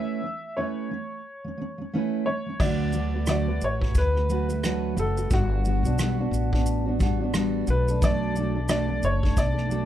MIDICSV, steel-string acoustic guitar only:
0, 0, Header, 1, 2, 480
1, 0, Start_track
1, 0, Key_signature, 2, "major"
1, 0, Tempo, 677201
1, 1845, Time_signature, 4, 2, 24, 8
1, 6984, End_track
2, 0, Start_track
2, 0, Title_t, "Steel-string acoustic guitar"
2, 0, Program_c, 0, 25
2, 0, Note_on_c, 0, 57, 66
2, 0, Note_on_c, 0, 61, 66
2, 0, Note_on_c, 0, 64, 75
2, 0, Note_on_c, 0, 71, 69
2, 157, Note_off_c, 0, 57, 0
2, 165, Note_on_c, 0, 57, 49
2, 169, Note_off_c, 0, 61, 0
2, 172, Note_off_c, 0, 64, 0
2, 177, Note_off_c, 0, 71, 0
2, 186, Note_on_c, 0, 61, 56
2, 367, Note_off_c, 0, 57, 0
2, 377, Note_off_c, 0, 61, 0
2, 406, Note_on_c, 0, 57, 67
2, 408, Note_on_c, 0, 61, 62
2, 417, Note_on_c, 0, 64, 64
2, 417, Note_on_c, 0, 71, 62
2, 637, Note_off_c, 0, 57, 0
2, 646, Note_off_c, 0, 61, 0
2, 646, Note_on_c, 0, 57, 48
2, 651, Note_off_c, 0, 64, 0
2, 651, Note_off_c, 0, 71, 0
2, 662, Note_on_c, 0, 61, 55
2, 847, Note_off_c, 0, 57, 0
2, 855, Note_off_c, 0, 61, 0
2, 1024, Note_on_c, 0, 57, 46
2, 1048, Note_on_c, 0, 61, 53
2, 1109, Note_off_c, 0, 57, 0
2, 1117, Note_on_c, 0, 57, 62
2, 1135, Note_off_c, 0, 61, 0
2, 1144, Note_on_c, 0, 61, 71
2, 1254, Note_off_c, 0, 57, 0
2, 1263, Note_on_c, 0, 57, 47
2, 1279, Note_off_c, 0, 61, 0
2, 1287, Note_on_c, 0, 61, 56
2, 1362, Note_off_c, 0, 57, 0
2, 1371, Note_off_c, 0, 61, 0
2, 1372, Note_on_c, 0, 57, 77
2, 1380, Note_on_c, 0, 61, 85
2, 1385, Note_on_c, 0, 64, 75
2, 1390, Note_on_c, 0, 71, 85
2, 1600, Note_off_c, 0, 57, 0
2, 1609, Note_on_c, 0, 57, 55
2, 1612, Note_off_c, 0, 61, 0
2, 1615, Note_off_c, 0, 64, 0
2, 1617, Note_off_c, 0, 71, 0
2, 1627, Note_on_c, 0, 61, 59
2, 1738, Note_off_c, 0, 57, 0
2, 1746, Note_on_c, 0, 57, 46
2, 1760, Note_off_c, 0, 61, 0
2, 1768, Note_on_c, 0, 61, 48
2, 1844, Note_off_c, 0, 57, 0
2, 1847, Note_on_c, 0, 50, 65
2, 1849, Note_on_c, 0, 54, 70
2, 1851, Note_off_c, 0, 61, 0
2, 1854, Note_on_c, 0, 57, 73
2, 1860, Note_on_c, 0, 66, 74
2, 1862, Note_on_c, 0, 71, 74
2, 2077, Note_off_c, 0, 54, 0
2, 2083, Note_off_c, 0, 57, 0
2, 2086, Note_off_c, 0, 50, 0
2, 2086, Note_on_c, 0, 54, 53
2, 2091, Note_on_c, 0, 57, 53
2, 2093, Note_off_c, 0, 66, 0
2, 2094, Note_off_c, 0, 71, 0
2, 2100, Note_on_c, 0, 66, 55
2, 2104, Note_on_c, 0, 71, 57
2, 2219, Note_off_c, 0, 71, 0
2, 2228, Note_on_c, 0, 71, 44
2, 2229, Note_off_c, 0, 54, 0
2, 2230, Note_off_c, 0, 66, 0
2, 2232, Note_off_c, 0, 57, 0
2, 2238, Note_on_c, 0, 66, 41
2, 2246, Note_on_c, 0, 57, 41
2, 2318, Note_on_c, 0, 50, 58
2, 2319, Note_off_c, 0, 57, 0
2, 2320, Note_off_c, 0, 66, 0
2, 2323, Note_on_c, 0, 54, 68
2, 2324, Note_off_c, 0, 71, 0
2, 2327, Note_on_c, 0, 57, 76
2, 2329, Note_on_c, 0, 66, 72
2, 2334, Note_on_c, 0, 71, 70
2, 2458, Note_off_c, 0, 71, 0
2, 2465, Note_off_c, 0, 50, 0
2, 2466, Note_off_c, 0, 66, 0
2, 2467, Note_on_c, 0, 71, 54
2, 2468, Note_off_c, 0, 54, 0
2, 2470, Note_off_c, 0, 57, 0
2, 2475, Note_on_c, 0, 66, 48
2, 2484, Note_on_c, 0, 57, 41
2, 2690, Note_off_c, 0, 71, 0
2, 2699, Note_on_c, 0, 71, 51
2, 2700, Note_off_c, 0, 66, 0
2, 2706, Note_off_c, 0, 57, 0
2, 2709, Note_on_c, 0, 66, 46
2, 2715, Note_on_c, 0, 57, 34
2, 2934, Note_off_c, 0, 71, 0
2, 2942, Note_on_c, 0, 71, 50
2, 2945, Note_off_c, 0, 66, 0
2, 2952, Note_off_c, 0, 57, 0
2, 2953, Note_on_c, 0, 66, 42
2, 2964, Note_on_c, 0, 57, 41
2, 3039, Note_off_c, 0, 57, 0
2, 3040, Note_on_c, 0, 54, 52
2, 3041, Note_off_c, 0, 71, 0
2, 3047, Note_off_c, 0, 66, 0
2, 3047, Note_on_c, 0, 57, 57
2, 3055, Note_on_c, 0, 66, 61
2, 3061, Note_on_c, 0, 71, 61
2, 3174, Note_off_c, 0, 71, 0
2, 3182, Note_on_c, 0, 71, 50
2, 3184, Note_off_c, 0, 66, 0
2, 3186, Note_off_c, 0, 54, 0
2, 3190, Note_off_c, 0, 57, 0
2, 3193, Note_on_c, 0, 66, 41
2, 3205, Note_on_c, 0, 57, 46
2, 3282, Note_off_c, 0, 71, 0
2, 3287, Note_off_c, 0, 66, 0
2, 3288, Note_on_c, 0, 50, 67
2, 3289, Note_off_c, 0, 57, 0
2, 3292, Note_on_c, 0, 54, 77
2, 3298, Note_on_c, 0, 57, 77
2, 3300, Note_on_c, 0, 66, 73
2, 3302, Note_on_c, 0, 71, 81
2, 3512, Note_off_c, 0, 54, 0
2, 3515, Note_off_c, 0, 57, 0
2, 3520, Note_on_c, 0, 54, 47
2, 3521, Note_off_c, 0, 66, 0
2, 3523, Note_on_c, 0, 57, 52
2, 3526, Note_off_c, 0, 50, 0
2, 3527, Note_off_c, 0, 71, 0
2, 3529, Note_on_c, 0, 66, 53
2, 3535, Note_on_c, 0, 71, 52
2, 3656, Note_off_c, 0, 71, 0
2, 3664, Note_on_c, 0, 71, 39
2, 3666, Note_off_c, 0, 54, 0
2, 3666, Note_off_c, 0, 66, 0
2, 3668, Note_off_c, 0, 57, 0
2, 3675, Note_on_c, 0, 66, 43
2, 3686, Note_on_c, 0, 57, 36
2, 3762, Note_off_c, 0, 71, 0
2, 3763, Note_off_c, 0, 57, 0
2, 3764, Note_on_c, 0, 55, 66
2, 3766, Note_off_c, 0, 66, 0
2, 3766, Note_on_c, 0, 59, 69
2, 3768, Note_on_c, 0, 62, 75
2, 3774, Note_on_c, 0, 66, 74
2, 3999, Note_off_c, 0, 55, 0
2, 4005, Note_off_c, 0, 59, 0
2, 4006, Note_off_c, 0, 62, 0
2, 4008, Note_on_c, 0, 55, 54
2, 4009, Note_off_c, 0, 66, 0
2, 4016, Note_on_c, 0, 59, 62
2, 4023, Note_on_c, 0, 62, 54
2, 4030, Note_on_c, 0, 66, 57
2, 4140, Note_off_c, 0, 66, 0
2, 4148, Note_off_c, 0, 62, 0
2, 4149, Note_on_c, 0, 66, 48
2, 4150, Note_off_c, 0, 55, 0
2, 4154, Note_off_c, 0, 59, 0
2, 4156, Note_on_c, 0, 62, 48
2, 4167, Note_on_c, 0, 59, 39
2, 4242, Note_off_c, 0, 59, 0
2, 4244, Note_off_c, 0, 66, 0
2, 4247, Note_on_c, 0, 55, 66
2, 4248, Note_off_c, 0, 62, 0
2, 4250, Note_on_c, 0, 59, 73
2, 4256, Note_on_c, 0, 62, 69
2, 4262, Note_on_c, 0, 66, 73
2, 4376, Note_off_c, 0, 66, 0
2, 4384, Note_on_c, 0, 66, 60
2, 4387, Note_off_c, 0, 62, 0
2, 4390, Note_off_c, 0, 55, 0
2, 4391, Note_off_c, 0, 59, 0
2, 4395, Note_on_c, 0, 62, 53
2, 4403, Note_on_c, 0, 59, 50
2, 4620, Note_off_c, 0, 66, 0
2, 4626, Note_off_c, 0, 62, 0
2, 4629, Note_on_c, 0, 66, 49
2, 4634, Note_on_c, 0, 62, 49
2, 4635, Note_off_c, 0, 59, 0
2, 4650, Note_on_c, 0, 59, 47
2, 4852, Note_off_c, 0, 66, 0
2, 4860, Note_on_c, 0, 66, 55
2, 4865, Note_off_c, 0, 62, 0
2, 4873, Note_off_c, 0, 59, 0
2, 4874, Note_on_c, 0, 62, 51
2, 4881, Note_on_c, 0, 59, 46
2, 4956, Note_on_c, 0, 55, 68
2, 4960, Note_off_c, 0, 59, 0
2, 4960, Note_off_c, 0, 66, 0
2, 4967, Note_off_c, 0, 62, 0
2, 4968, Note_on_c, 0, 59, 58
2, 4975, Note_on_c, 0, 62, 65
2, 4977, Note_on_c, 0, 66, 70
2, 5098, Note_off_c, 0, 66, 0
2, 5104, Note_off_c, 0, 55, 0
2, 5106, Note_off_c, 0, 62, 0
2, 5106, Note_on_c, 0, 66, 52
2, 5110, Note_off_c, 0, 59, 0
2, 5114, Note_on_c, 0, 62, 54
2, 5129, Note_on_c, 0, 59, 51
2, 5202, Note_off_c, 0, 59, 0
2, 5202, Note_on_c, 0, 55, 86
2, 5203, Note_off_c, 0, 66, 0
2, 5205, Note_off_c, 0, 62, 0
2, 5210, Note_on_c, 0, 59, 78
2, 5213, Note_on_c, 0, 62, 85
2, 5218, Note_on_c, 0, 66, 92
2, 5443, Note_off_c, 0, 55, 0
2, 5447, Note_off_c, 0, 59, 0
2, 5448, Note_off_c, 0, 62, 0
2, 5448, Note_on_c, 0, 54, 50
2, 5451, Note_off_c, 0, 66, 0
2, 5453, Note_on_c, 0, 57, 54
2, 5462, Note_on_c, 0, 62, 53
2, 5470, Note_on_c, 0, 69, 56
2, 5583, Note_off_c, 0, 69, 0
2, 5590, Note_off_c, 0, 54, 0
2, 5592, Note_on_c, 0, 69, 45
2, 5593, Note_off_c, 0, 57, 0
2, 5595, Note_off_c, 0, 62, 0
2, 5603, Note_on_c, 0, 62, 44
2, 5614, Note_on_c, 0, 57, 39
2, 5681, Note_off_c, 0, 57, 0
2, 5683, Note_on_c, 0, 47, 70
2, 5686, Note_off_c, 0, 62, 0
2, 5686, Note_off_c, 0, 69, 0
2, 5686, Note_on_c, 0, 54, 70
2, 5690, Note_on_c, 0, 57, 74
2, 5694, Note_on_c, 0, 69, 75
2, 5695, Note_on_c, 0, 62, 73
2, 5915, Note_off_c, 0, 54, 0
2, 5922, Note_off_c, 0, 57, 0
2, 5923, Note_off_c, 0, 47, 0
2, 5923, Note_on_c, 0, 54, 52
2, 5929, Note_off_c, 0, 62, 0
2, 5929, Note_off_c, 0, 69, 0
2, 5930, Note_on_c, 0, 57, 60
2, 5940, Note_on_c, 0, 62, 60
2, 5944, Note_on_c, 0, 69, 62
2, 6052, Note_off_c, 0, 69, 0
2, 6060, Note_off_c, 0, 62, 0
2, 6060, Note_on_c, 0, 69, 50
2, 6068, Note_off_c, 0, 54, 0
2, 6069, Note_on_c, 0, 62, 45
2, 6071, Note_off_c, 0, 57, 0
2, 6079, Note_on_c, 0, 57, 40
2, 6152, Note_on_c, 0, 47, 73
2, 6154, Note_off_c, 0, 57, 0
2, 6158, Note_off_c, 0, 62, 0
2, 6158, Note_on_c, 0, 54, 70
2, 6160, Note_off_c, 0, 69, 0
2, 6162, Note_on_c, 0, 57, 68
2, 6167, Note_on_c, 0, 62, 75
2, 6168, Note_on_c, 0, 69, 71
2, 6287, Note_off_c, 0, 69, 0
2, 6295, Note_off_c, 0, 62, 0
2, 6296, Note_on_c, 0, 69, 48
2, 6302, Note_off_c, 0, 47, 0
2, 6303, Note_on_c, 0, 62, 46
2, 6305, Note_off_c, 0, 54, 0
2, 6307, Note_off_c, 0, 57, 0
2, 6317, Note_on_c, 0, 57, 46
2, 6533, Note_off_c, 0, 69, 0
2, 6541, Note_on_c, 0, 69, 43
2, 6542, Note_off_c, 0, 62, 0
2, 6550, Note_on_c, 0, 62, 42
2, 6552, Note_off_c, 0, 57, 0
2, 6564, Note_on_c, 0, 57, 38
2, 6754, Note_off_c, 0, 69, 0
2, 6763, Note_on_c, 0, 69, 49
2, 6768, Note_off_c, 0, 62, 0
2, 6776, Note_off_c, 0, 57, 0
2, 6777, Note_on_c, 0, 62, 44
2, 6785, Note_on_c, 0, 57, 39
2, 6866, Note_off_c, 0, 57, 0
2, 6868, Note_on_c, 0, 54, 58
2, 6871, Note_off_c, 0, 69, 0
2, 6875, Note_off_c, 0, 62, 0
2, 6875, Note_on_c, 0, 57, 56
2, 6884, Note_on_c, 0, 62, 61
2, 6887, Note_on_c, 0, 69, 66
2, 6984, Note_off_c, 0, 54, 0
2, 6984, Note_off_c, 0, 57, 0
2, 6984, Note_off_c, 0, 62, 0
2, 6984, Note_off_c, 0, 69, 0
2, 6984, End_track
0, 0, End_of_file